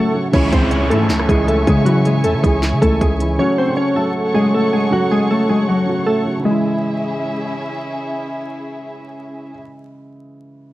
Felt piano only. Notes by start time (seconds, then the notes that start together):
Already playing: C#3 F#3 A3 F#4
0.13 C#3 F#3 A3 F#4
0.32 C#3 E3 G#3 E4
0.61 C#3 E3 G#3 E4
0.89 C#3 E3 E4
1.28 C#3 E3 G#3 E4
1.85 C#3 E3 G#3 E4
2.42 C#3 E3 G#3 E4
2.80 C#3 E3 G#3 E4
3.19 C#3 E3 G#3 E4
3.38 C#3 F#3 A3 F#4
3.66 C#3 F#3 A3 F#4
3.95 C#3 F#3 A3 F#4
4.33 C#3 F#3 A3 F#4
4.91 C#3 F#3 A3 F#4
5.48 C#3 F#3 A3 F#4
5.86 C#3 F#3 A3 F#4
6.24 C#3 F#3 A3 F#4
6.39 C#3
6.43 E3 G#3
6.51 E4